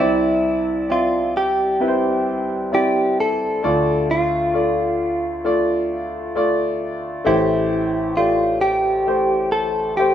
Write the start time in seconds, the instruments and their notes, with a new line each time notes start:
0.00 grand piano C2 C3 C4 E4 D5, clean electric guitar E4
0.89 grand piano C4 D5 E5, clean electric guitar F4
1.37 clean electric guitar G4
1.80 grand piano C4 E4 B4
1.88 grand piano C5
2.72 grand piano C4 E4 D5, clean electric guitar G4
3.20 clean electric guitar A4
3.63 grand piano D2 D3 A3 F4 D5
4.11 clean electric guitar F4
4.54 grand piano A3 F4 D5
5.44 grand piano A3 F4 D5
6.35 grand piano A3 F4 D5
7.25 grand piano A1 A2 A3 G4 C5, clean electric guitar E4
8.17 grand piano A3 G4 D5, clean electric guitar F4
8.61 clean electric guitar G4
9.07 grand piano A3 G4 C5
9.52 clean electric guitar A4
9.97 grand piano A3 G4 C5, clean electric guitar G4